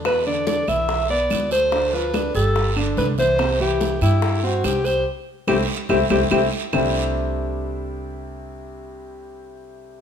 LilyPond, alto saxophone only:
\new Staff \with { instrumentName = "Alto saxophone" } { \time 4/4 \key c \major \tempo 4 = 144 b'8 d''8 d''8 e''4 d''4 c''8~ | c''8 b'4 a'4 r8 b'8 c''8~ | c''8 g'4 e'4 fis'8 g'8 c''8 | r4 g'8 r8 g'8 g'8 g'8 r8 |
r1 | r1 | }